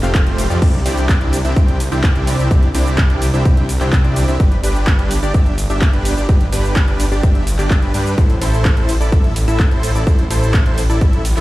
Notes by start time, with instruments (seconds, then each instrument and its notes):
0.03 detuned saw bass F1, supersaw synth A3 C4 F4 G4 F5, clap, closed hi-hat, cabasa
0.15 kick, clap, closed hi-hat, cabasa
0.26 detuned saw bass F1, supersaw synth A3 C4 F4 G4 C5, closed hi-hat
0.38 open hi-hat, ride, cabasa
0.50 detuned saw bass F2, supersaw synth A3 C4 F4 G4 D5, closed hi-hat, cabasa
0.62 supersaw synth C4 D4 G4 D5, kick, closed hi-hat, crash, cabasa
0.74 closed hi-hat
0.86 detuned saw bass C2, supersaw synth C4 D4 E4 G4 D5, open hi-hat, ride, cabasa
0.97 closed hi-hat, cabasa
1.09 kick, clap, closed hi-hat, cabasa
1.21 detuned saw bass C2, supersaw synth C4 D4 E4 G4 D5, closed hi-hat
1.33 open hi-hat, ride, cabasa
1.45 detuned saw bass C2, supersaw synth C4 D4 E4 G4 E5, closed hi-hat, cabasa
1.56 detuned saw bass C2, supersaw synth D4 E4 G4 G5, kick, closed hi-hat, cabasa
1.68 closed hi-hat
1.80 open hi-hat, ride, cabasa
1.92 detuned saw bass C2, supersaw synth C4 D4 E4 G4 G5, closed hi-hat, cabasa
2.04 kick, clap, closed hi-hat, cabasa
2.15 detuned saw bass C2, supersaw synth C4 D4 E4 G4 D5, closed hi-hat
2.27 open hi-hat, ride, cabasa
2.39 detuned saw bass C2, supersaw synth C4 D4 E4 G4 E5, closed hi-hat, cabasa
2.51 detuned saw bass C2, supersaw synth C4 D4 E4 G4 D5, kick, closed hi-hat, cabasa
2.63 closed hi-hat
2.74 detuned saw bass C2, supersaw synth C4 D4 E4 G4 D5, open hi-hat, ride, cabasa
2.86 closed hi-hat, cabasa
2.98 kick, clap, closed hi-hat, cabasa
3.10 detuned saw bass C2, supersaw synth C4 D4 E4 G4 D5, closed hi-hat
3.22 open hi-hat, ride, cabasa
3.34 detuned saw bass C2, supersaw synth C4 D4 E4 G4 E5, closed hi-hat, cabasa
3.45 detuned saw bass C2, supersaw synth C4 D4 E4 G4 G5, kick, closed hi-hat, cabasa
3.57 closed hi-hat
3.69 open hi-hat, ride, cabasa
3.81 detuned saw bass C2, supersaw synth C4 D4 E4 G4 G5, clap, closed hi-hat, cabasa
3.93 kick, clap, closed hi-hat, cabasa
4.04 detuned saw bass C2, supersaw synth C4 D4 E4 G4 D5, closed hi-hat
4.16 open hi-hat, ride, cabasa
4.28 detuned saw bass C2, supersaw synth C4 D4 E4 G4 E5, closed hi-hat, cabasa
4.40 detuned saw bass G1, kick, closed hi-hat, cabasa
4.52 closed hi-hat
4.63 detuned saw bass G1, supersaw synth D4 G4 B4, open hi-hat, ride, cabasa
4.75 closed hi-hat, cabasa
4.87 kick, clap, closed hi-hat, cabasa
4.99 detuned saw bass G1, supersaw synth D4 G4 B4, closed hi-hat
5.11 open hi-hat, ride, cabasa
5.23 detuned saw bass G1, supersaw synth D4 G4 D5, cabasa
5.34 detuned saw bass G1, supersaw synth D4, kick, closed hi-hat, cabasa
5.46 closed hi-hat
5.58 open hi-hat, ride, cabasa
5.70 detuned saw bass G1, supersaw synth D4 G4 E5, closed hi-hat, cabasa
5.82 kick, clap, closed hi-hat, cabasa
5.93 detuned saw bass G1, supersaw synth D4 G4 B4, closed hi-hat
6.05 open hi-hat, ride, cabasa
6.17 detuned saw bass G1, supersaw synth D4 G4 D5, closed hi-hat, cabasa
6.29 detuned saw bass G1, supersaw synth D4 G4 B4, kick, closed hi-hat, cabasa
6.41 closed hi-hat
6.52 detuned saw bass G1, supersaw synth D4 G4 B4, open hi-hat, ride, cabasa
6.64 closed hi-hat, cabasa
6.76 kick, clap, closed hi-hat, cabasa
6.88 detuned saw bass G1, supersaw synth D4 G4 B4, closed hi-hat
7.00 open hi-hat, ride, cabasa
7.12 detuned saw bass G1, supersaw synth D4 G4 D5, closed hi-hat, cabasa
7.23 detuned saw bass G1, supersaw synth D4 G4, kick, closed hi-hat, cabasa
7.35 closed hi-hat
7.47 open hi-hat, ride, cabasa
7.59 detuned saw bass G1, supersaw synth D4 G4 D5, clap, closed hi-hat, cabasa
7.71 kick, clap, closed hi-hat, cabasa
7.82 detuned saw bass G1, supersaw synth D4 G4 B4, closed hi-hat
7.94 detuned saw bass G2, supersaw synth D4 G4 B4, open hi-hat, ride, cabasa
8.06 closed hi-hat, cabasa
8.18 detuned saw bass A1, supersaw synth E4 A4 C5, kick, closed hi-hat, cabasa
8.30 closed hi-hat
8.41 detuned saw bass A1, supersaw synth E4 A4 C5, open hi-hat, ride, cabasa
8.53 closed hi-hat, cabasa
8.65 kick, clap, closed hi-hat, cabasa
8.77 detuned saw bass A1, supersaw synth E4 A4 C5, closed hi-hat
8.89 open hi-hat, ride, cabasa
9.00 detuned saw bass A1, supersaw synth E4 A4 D5, closed hi-hat, cabasa
9.12 detuned saw bass A1, supersaw synth E4 A4 E5, kick, closed hi-hat, cabasa
9.24 closed hi-hat
9.36 open hi-hat, ride, cabasa
9.48 detuned saw bass A1, supersaw synth E4 A4 E5, closed hi-hat, cabasa
9.60 kick, clap, closed hi-hat, cabasa
9.71 detuned saw bass A1, supersaw synth E4 A4 C5, closed hi-hat
9.83 open hi-hat, ride, cabasa
9.95 detuned saw bass A1, supersaw synth E4 A4 D5, closed hi-hat, cabasa
10.07 supersaw synth E4 C5, kick, closed hi-hat, cabasa
10.19 closed hi-hat
10.30 detuned saw bass A1, supersaw synth E4 A4 C5, open hi-hat, ride, cabasa
10.42 closed hi-hat, cabasa
10.54 kick, clap, closed hi-hat, cabasa
10.66 detuned saw bass A1, supersaw synth E4 A4 C5, closed hi-hat
10.78 open hi-hat, ride, cabasa
10.90 detuned saw bass A1, supersaw synth E4 A4 D5, closed hi-hat, cabasa
11.01 supersaw synth E4 A4 E5, kick, closed hi-hat, cabasa
11.13 closed hi-hat
11.25 open hi-hat, ride, cabasa
11.37 detuned saw bass A1, supersaw synth E4 A4 E5, clap, closed hi-hat, cabasa